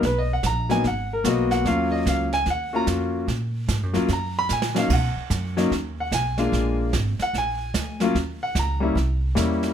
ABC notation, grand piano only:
X:1
M:4/4
L:1/8
Q:"Swing" 1/4=148
K:Ebm
V:1 name="Grand piano"
(3c e g b a g B e g | f e f a g b z2 | z4 b c' a f | ^f3 z2 f a2- |
a z2 g a3 z | z g b3 z3 |]
V:2 name="Grand piano"
z3 [G,B,CE] z2 [G,B,CG]2 | [G,B,DF]3 z2 [B,DFG]3 | z3 [G,B,DF] z3 [G,B,DE] | z3 [^F,^A,D^D] z3 [_A,^A,=D=F]- |
[A,^A,=DF]2 z4 z [G,B,_DF] | z3 [=G,B,D_F] z2 [G,B,D=E]2 |]